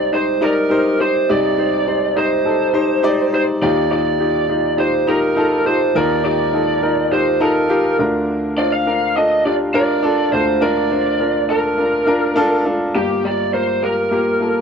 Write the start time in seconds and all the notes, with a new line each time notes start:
Already playing: C2 C3 D#4 G4 C5 D5
0.12 D#4 G4 C5
0.41 D#4 G4 A#4 D5
0.70 D#4 G4 C5
0.99 D#4 G4 C5
1.29 C2 C3 D#4 G4 D5
1.58 D#4 G4 C5
1.87 D#4 G4 C5
2.16 D#4 G4 C5 D#5
2.45 D#4 G4 A4
2.74 D#4 G4 C5
3.03 D#4 G4 D5
3.32 D#4 G4 C5
3.61 D#2 D#3 D#4 F4 G4 D5
3.91 D#4 F4 G4 D5
4.20 D#4 F4 G4
4.49 D#4 F4 G4
4.77 D#4 F4 G4 C5
5.07 D#4 F4 G4 A#4
5.36 D#4 F4 A4
5.65 D#4 F4 G4 C5
5.95 D#2 D#3 D#4 F4 A#4 D5
6.24 D#4 F4 G4 D5
6.53 D#4 F4 A4
6.82 D#4 F4 A#4
7.11 D#4 F4 G4 C5
7.40 D#4 F4 A4 A#4
7.69 D#4 F4 G4
7.99 D2 D3 D4 F4 A#4
8.57 D4 F4 C5 D5
8.72 F5
8.86 D4 F4 A#4
9.16 D4 F4 A4 D#5
9.45 D4 F4 G4 D5
9.74 D4 F4 A#4 D5
10.03 D4 F4 A4
10.32 D2 D3 D4 F4 A4 C5
10.61 D4 F4 A#4 D5
10.90 D4 F4 C5
11.20 D4 F4 A#4
11.49 D4 F4 A4 A#4
11.78 D4 F4 A#4
12.07 D4 F4 A#4
12.36 D4 F4 A4
12.65 D4 F4 A4
12.94 G1 G2 A#3 F4 G4
13.24 A#3 F4 G4 D5
13.53 A#3 F4 A#4 C5
13.82 A#3 F4 G4 A#4
14.11 A#3 F4 G4
14.41 A#3 F4 A4